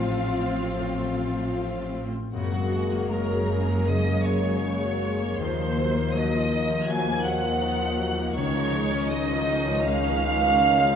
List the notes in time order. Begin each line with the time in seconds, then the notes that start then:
Already playing: A1 A2 F3 C4 F4 C5 F5
0.01 F4
0.27 C5
0.53 C4
0.79 A2
1.04 F3
1.30 C5
1.56 F4
1.82 C5
2.08 C4
2.33 F#1 F#2 C#3 G#3 A#3 F#4 G#4 F#5
2.53 F#3
2.59 G#3
2.73 G#3
2.85 A#4
2.93 A#3
3.09 G#3 A#4 C#5 A#5
3.29 F#3
3.36 G#4
3.48 C#3
3.61 A#4
3.67 F#3
3.86 C#3 G#3 D#5 D#6
4.05 A#3
4.13 G#3
4.24 G#3 C#5 C#6
4.38 A#4
4.44 F#3
4.64 C#3 C#5
4.83 F#3
4.89 G#4
5.03 G#3
5.14 A#4
5.21 A#3
5.39 D#2 D#3 F3 C5 C6
5.58 F3
5.64 D#4
5.77 F#3
5.94 A#3
6.13 F#3 D#5 A#5 D#6
6.17 D#5
6.33 F3
6.38 D#5
6.51 D#3
6.69 F3
6.87 F3 F#3 G#5 G#6
7.06 A#3
7.11 D#4
7.24 F#3 F#5 F#6
7.43 F3
7.62 D#3 A#5
7.81 F3
7.87 D#5
8.00 F#3
8.13 F4
8.18 A#3
8.36 C#2 C#3 D#3 C#4 D#4 C#5 C#6
8.55 F3
8.62 F3
8.74 G#3
8.85 C#5
8.92 C#4
9.10 G#3 D#5 D#6
9.30 F3
9.35 F4
9.48 D#3
9.60 C#5
9.66 F3
9.85 G#3 C#4 F5 F6
10.04 C#4
10.11 F3
10.22 G#3
10.36 C#5
10.43 F3
10.61 D#3 D#5
10.81 F3
10.88 F4